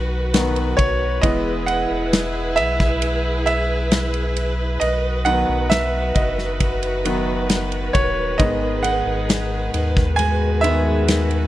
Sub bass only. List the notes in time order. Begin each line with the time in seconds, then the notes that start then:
Already playing: B1
0.79 B1
1.23 E1
1.91 E1
2.58 B1
4.82 B1
5.49 B1
6.16 F#1
7.95 D#1
8.40 G#1
9.07 G#1
9.74 D#2